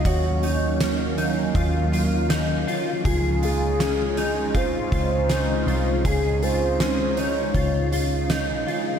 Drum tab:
HH |xxxxxxxx|xxxxxxxx|xxxxxxxx|
SD |--o---o-|--o---o-|--o---o-|
BD |o---o---|o---oo--|o---o---|